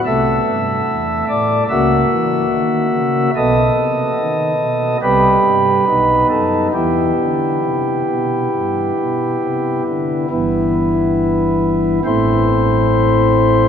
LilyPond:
<<
  \new Staff \with { instrumentName = "Pipe organ" } { \time 4/4 \key e \minor \tempo 4 = 70 << { e''4. d''8 e''2 | dis''2 b'4. a'8 | g'2.~ g'8 r8 | <g, e b e'>2 <a, a c' e' c''>2 | } \\ { <a a'>2 <ais fis'>2 | <b a'>2 <g g'>4 <b dis'>4 | <b e'>1 | r1 | } >> }
  \new Staff \with { instrumentName = "Pipe organ" } { \clef bass \time 4/4 \key e \minor <c, c>8 g,8 e,8 a,8 <cis, cis>8 e8 dis8 cis8 | <b,, b,>8 c8 dis8 b,8 <c, c>8 g,8 <b,, b,>8 fis,8 | <e, e>8 d8 c8 b,8 g,8 b,8 c8 d8 | g,,2 a,,2 | }
>>